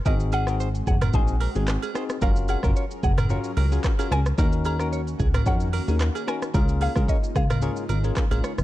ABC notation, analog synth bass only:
X:1
M:4/4
L:1/16
Q:"Swing 16ths" 1/4=111
K:Abmix
V:1 name="Analog synth bass" clef=bass
A,,,6 G,,,2 B,,,3 A,,,2 z3 | G,,,3 G,,, z2 G,,,3 z D,,2 z2 D,,2 | E,,6 D,,2 F,,3 E,,2 z3 | D,,3 D,, z2 D,,3 z A,,,2 z B,,, z G,,, |]